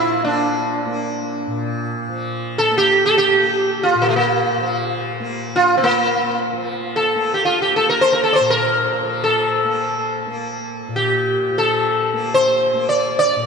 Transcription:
Already playing: tanpura A#2 F3 A#3, sitar E4
0.24 tanpura A#3, sitar D4
0.86 tanpura A#3
1.47 tanpura A#2
2.09 tanpura F3
2.58 sitar A4
2.71 tanpura A#3
2.78 sitar G4
3.06 sitar A4
3.18 sitar G4
3.33 tanpura A#3
3.83 sitar F4
3.95 tanpura A#2
4.02 sitar A#3
4.09 sitar A3
4.16 sitar A#3
4.58 tanpura F3
5.20 tanpura A#3
5.56 sitar F4
5.77 sitar C4
5.82 tanpura A#3, sitar A#3
6.53 tanpura F3
6.96 sitar A4
7.15 tanpura A#3
7.34 sitar G4
7.45 sitar F4
7.62 sitar G4
7.76 tanpura A#3, sitar A4
7.89 sitar A#4
8.01 sitar C5
8.13 sitar A#4
8.24 sitar A4
8.33 sitar C5 D5
8.40 tanpura A#2
8.50 sitar A#4
9.02 tanpura F3
9.24 sitar A4
9.64 tanpura A#3
10.26 tanpura A#3
10.88 tanpura A#2
10.96 sitar G4
11.50 tanpura F3
11.58 sitar A4
12.13 tanpura A#3
12.34 sitar C5
12.74 tanpura A#3
12.89 sitar D5
13.19 sitar D5
13.36 tanpura A#2

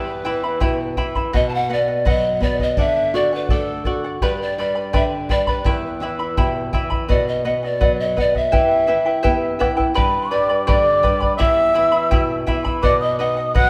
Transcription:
Already playing: nylon-string guitar E2, charango E4 G4 E5 G5 B5, pan flute B4
0.25 nylon-string guitar E3, charango E4 E5 G5 B5
0.43 charango E4 E5 B5
0.60 nylon-string guitar B2, charango E4 G4 E5 G5 B5, bombo low
0.97 nylon-string guitar E3, charango E4 E5 G5 B5, bombo low
1.15 charango E4 E5 B5, bombo low
1.33 nylon-string guitar B2, charango B4 D#5 F#5, pan flute D#5, bombo low
1.48 pan flute A5
1.54 pan flute F#5
1.69 nylon-string guitar B3, charango B4 D#5 F#5, pan flute D5
1.88 charango D#5 F#5
2.05 nylon-string guitar F#3, charango B4 D#5 F#5, pan flute D#5, bombo low
2.40 nylon-string guitar B3, charango B4 D#5 F#5, pan flute D5, bombo low
2.59 charango D#5 F#5, pan flute D#5, bombo low
2.77 nylon-string guitar D3, charango A4 D5 F#5, pan flute E5, bombo low
3.14 nylon-string guitar F#4, charango A4 D5 F#5, pan flute D5
3.33 pan flute B4, charango D5 F#5
3.49 nylon-string guitar A3, charango A4 D5 F#5, pan flute A4, bombo low
3.85 nylon-string guitar F#4, charango A4 D5 F#5, bombo low
4.04 charango D5 F#5
4.22 nylon-string guitar G2, charango G4 B4 D5 G5 B5, pan flute B4, bombo low
4.41 pan flute D5
4.58 nylon-string guitar G3, charango B4 D5 G5 B5, pan flute D5
4.75 charango B4 D5 B5
4.93 nylon-string guitar D3, charango G4 B4 D5 G5 B5, pan flute E5, bombo low
5.29 nylon-string guitar G3, charango B4 D5 G5 B5, pan flute D5, bombo low
5.47 pan flute B4, charango B4 D5 B5, bombo low
5.64 nylon-string guitar E2, charango E4 G4 E5 G5 B5, pan flute B4, bombo low
6.00 nylon-string guitar E3, charango E4 E5 G5 B5
6.19 charango E4 E5 B5
6.37 nylon-string guitar B2, charango E4 G4 E5 G5 B5, bombo low
6.73 nylon-string guitar E3, charango E4 E5 G5 B5, bombo low
6.90 charango E4 E5 B5, bombo low
7.09 nylon-string guitar B2, charango B4 D#5 F#5, pan flute D5, bombo low
7.27 pan flute D#5
7.45 nylon-string guitar B3, charango B4 D#5 F#5, pan flute D#5
7.63 pan flute D5, charango D#5 F#5
7.81 nylon-string guitar F#3, charango B4 D#5 F#5, bombo low
7.99 pan flute D#5
8.17 nylon-string guitar B3, charango B4 D#5 F#5, pan flute D5, bombo low
8.35 charango D#5 F#5, pan flute E5, bombo low
8.52 nylon-string guitar E3, charango E4 G4 B4 E5 G5, bombo low
8.87 charango E4 B4 E5 G5, nylon-string guitar E4
9.06 charango E4 B4 G5
9.23 nylon-string guitar B3, charango E4 G4 B4 E5 G5, bombo low
9.59 charango E4 B4 E5 G5, nylon-string guitar E4, bombo rim, bombo low
9.77 charango E4 B4 G5, bombo low
9.94 nylon-string guitar G2, charango G4 B4 D5 G5 B5, pan flute B4, quena B5, bombo low
10.30 nylon-string guitar G3, charango B4 D5 G5 B5, pan flute D5, quena D6
10.49 charango B4 D5 B5
10.65 nylon-string guitar D3, charango G4 B4 D5 G5 B5, pan flute D5, quena D6, bombo low
11.03 nylon-string guitar G3, charango B4 D5 G5 B5, bombo low
11.20 charango B4 D5 B5, bombo low
11.36 nylon-string guitar E2, charango E4 G4 E5 G5 B5, pan flute E5, quena E6
11.41 bombo low
11.74 nylon-string guitar E3, charango E4 E5 G5 B5
11.92 charango E4 E5 B5
12.11 nylon-string guitar B2, charango E4 G4 E5 G5 B5, bombo low
12.47 nylon-string guitar E3, charango E4 E5 G5 B5, bombo low
12.65 charango E4 E5 B5, bombo low
12.82 nylon-string guitar B2, charango B4 D#5 F#5, pan flute D5, quena D6, bombo low
13.00 pan flute D#5, quena D#6
13.19 nylon-string guitar D#4, charango B4 D#5 F#5, pan flute D#5, quena D#6
13.37 charango D#5 F#5
13.54 nylon-string guitar F#3, charango B4 D#5 F#5, pan flute F#5, quena F#6, bombo low

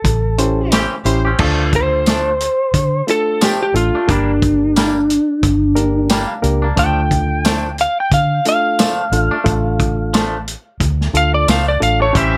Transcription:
Already playing: lead electric guitar A4
0.04 fingered electric bass A1, kick, closed hi-hat
0.38 reed electric piano C#4 E4 G4 C5, closed hi-hat
0.72 clean electric guitar E3 C4 C#4 G4, snare, closed hi-hat, tambourine
1.04 fingered electric bass A1, horn section C#4 G4 C5, reed electric piano C#4 E4 G4 C5, closed hi-hat
1.25 clean electric guitar C4 C#4 G4
1.38 fingered electric bass D2, clean electric guitar F3 A3 D4, reed electric piano A3 D4 F4 A4, kick, crash
1.73 lead electric guitar C5, kick, closed hi-hat
2.06 clean electric guitar F3 A3 D4, snare, closed hi-hat, tambourine
2.40 closed hi-hat
2.74 fingered electric bass D3, kick, closed hi-hat
3.07 reed electric piano A3 D4 F4 A4, lead electric guitar A4, closed hi-hat
3.41 clean electric guitar F3 A3 D4, lead electric guitar G4, snare, closed hi-hat, tambourine
3.63 lead electric guitar G4
3.73 fingered electric bass A1, reed electric piano A3 D4 F4 A4, lead electric guitar F4, closed hi-hat
3.95 clean electric guitar A3 D4
4.07 fingered electric bass G1, clean electric guitar G3 A#3 D4, reed electric piano A#3 D4 G4 A#4, lead electric guitar D4, kick, closed hi-hat
4.42 kick, closed hi-hat
4.76 clean electric guitar G3 A#3 D4, snare, closed hi-hat, tambourine
5.10 closed hi-hat
5.43 fingered electric bass G1, kick, closed hi-hat
5.75 reed electric piano A#3 D4 G4 A#4, closed hi-hat
6.09 clean electric guitar G3 A#3 D4, reed electric piano G5, snare, closed hi-hat, tambourine
6.28 reed electric piano F5
6.42 fingered electric bass C#2, reed electric piano A#3 D4 G4 A#4 D5, closed hi-hat
6.62 clean electric guitar A#3 D4
6.76 fingered electric bass D2, clean electric guitar F3 A3 D4, reed electric piano A3 D4 F4 A4, lead electric guitar G5, kick, closed hi-hat
7.11 kick, closed hi-hat
7.45 clean electric guitar F3 A3 D4, snare, closed hi-hat, tambourine
7.78 lead electric guitar F5, closed hi-hat
8.00 lead electric guitar G5
8.12 fingered electric bass D3, lead electric guitar F5, kick, closed hi-hat
8.45 reed electric piano A3 D4 F4 A4, lead electric guitar F5, closed hi-hat
8.79 clean electric guitar F3 A3 D4, snare, closed hi-hat, tambourine
9.12 fingered electric bass A1, reed electric piano A3 D4 F4 A4, closed hi-hat
9.31 clean electric guitar A3 D4
9.44 fingered electric bass A1, reed electric piano A3 D4 F4 A4, kick, closed hi-hat
9.80 kick, closed hi-hat
10.14 clean electric guitar F3 A3 D4, snare, closed hi-hat, tambourine
10.48 closed hi-hat
10.80 fingered electric bass D2, kick, closed hi-hat
11.01 snare
11.13 fingered electric bass D2, reed electric piano A3 D4 F4 A4, lead electric guitar F5, closed hi-hat
11.34 lead electric guitar D5
11.48 fingered electric bass C#2, clean electric guitar F3 A3 D4, lead electric guitar F5, snare, closed hi-hat, tambourine
11.68 lead electric guitar D5
11.80 fingered electric bass A1, reed electric piano A3 D4 F4 A4, lead electric guitar F5, closed hi-hat
12.00 clean electric guitar A3 D4, lead electric guitar C#5
12.13 fingered electric bass A1, clean electric guitar E3 C4 C#4 G4, reed electric piano C#4 E4 G4 C5, horn section C#4 G4 C5, kick, closed hi-hat
12.17 lead electric guitar E5

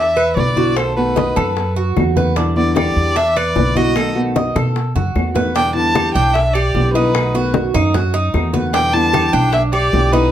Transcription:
Already playing: upright bass E2, cuban tres D4, violin E5
0.17 cuban tres B4, high bongo, high conga, claves
0.36 upright bass B1, nylon-string guitar D3 G3 B3 E4, violin D5, high bongo, low bongo, high conga
0.56 nylon-string guitar D3 G3 B3 E4, cuban tres F#4, high bongo, high conga
0.76 nylon-string guitar B2 D#3 A3 B3 F#4, cuban tres A4, violin C5, high bongo, high conga, claves
0.96 nylon-string guitar D#3 A3 B3 F#4, violin B4, high bongo, high conga
1.16 cuban tres D#5, high bongo, high conga
1.36 upright bass F#2, cuban tres A4, high conga, claves
1.56 muted nylon-string guitar stroke, high bongo, high conga
1.76 cuban tres F#4, high bongo, high conga
1.96 upright bass E2, nylon-string guitar D#3 A3 B3 F#4, high bongo, low bongo, high conga, claves
2.16 nylon-string guitar D#3 A3 B3 F#4, cuban tres B4, high bongo, high conga
2.36 nylon-string guitar B2 D3 G3 B3 E4, cuban tres D4, high bongo, high conga
2.56 nylon-string guitar D3 G3 B3 E4, violin D5, high bongo, high conga
2.76 cuban tres G4, violin D5, high bongo, high conga, claves
2.96 upright bass E2, high conga
3.16 cuban tres D4, violin E5, muted nylon-string guitar stroke, high bongo, high conga
3.36 cuban tres B4, violin D5, high bongo, high conga, claves
3.56 upright bass B1, nylon-string guitar D3 G3 B3 E4, high bongo, low bongo, high conga
3.75 nylon-string guitar D3 G3 B3 E4, cuban tres F#4, violin D#5, high bongo, high conga
3.95 nylon-string guitar B2 D#3 A3 B3 F#4, cuban tres A4, high bongo, high conga, claves
4.15 nylon-string guitar D#3 A3 B3 F#4, high bongo, high conga
4.36 cuban tres D#5, high bongo, high conga
4.56 upright bass B2, cuban tres A4, high conga, claves
4.76 muted nylon-string guitar stroke, high bongo, high conga
4.95 upright bass F#2, cuban tres F#4, high bongo, high conga
5.15 upright bass E2, nylon-string guitar D#3 A3 B3 F#4, high bongo, low bongo, claves
5.34 nylon-string guitar D#3 A3 B3 F#4, cuban tres B4, high bongo, low conga
5.54 nylon-string guitar B2 D3 G3 B3 E4, cuban tres D4, violin G5, high bongo, high conga
5.74 nylon-string guitar D3 G3 B3 E4, violin A5, high conga
5.95 cuban tres G4, high bongo, high conga, claves
6.14 upright bass B1, cuban tres D4, violin G5, high bongo, high conga
6.34 violin E5, muted nylon-string guitar stroke, high bongo, high conga
6.53 cuban tres G4, violin D5, high bongo, high conga, claves
6.74 upright bass B1, nylon-string guitar D3 G3 B3 E4, high bongo, low bongo, high conga
6.93 nylon-string guitar D3 G3 B3 E4, cuban tres D#4, violin B4, high bongo, high conga
7.14 nylon-string guitar B2 D#3 A3 B3 F#4, high bongo, high conga, claves
7.34 nylon-string guitar D#3 A3 B3 F#4, cuban tres F#4, high conga
7.54 high bongo, high conga
7.74 upright bass F#2, cuban tres D#4, high bongo, high conga, low conga, claves
7.94 cuban tres F#4, muted nylon-string guitar stroke, high bongo, high conga, low conga
8.14 cuban tres D#4, high bongo, high conga
8.34 upright bass E2, nylon-string guitar D#3 A3 B3 F#4, high bongo, low bongo, high conga, claves
8.53 nylon-string guitar D#3 A3 B3 F#4, cuban tres B4, high bongo, high conga
8.73 nylon-string guitar B2 D3 G3 B3 E4, cuban tres D4, violin G5, high bongo, high conga
8.93 nylon-string guitar D3 G3 B3 E4, violin A5, high conga
9.13 cuban tres G4, high bongo, high conga, claves
9.28 violin A5
9.33 upright bass B1, cuban tres D4, violin G5, high bongo, high conga
9.52 violin E5, muted nylon-string guitar stroke, high bongo, high conga
9.73 cuban tres G4, violin D5, high bongo, high conga, claves
9.92 upright bass B1, nylon-string guitar D3 G3 B3 E4, high bongo, low bongo, high conga
10.12 nylon-string guitar D3 G3 B3 E4, cuban tres D#4, violin B4, high bongo, high conga

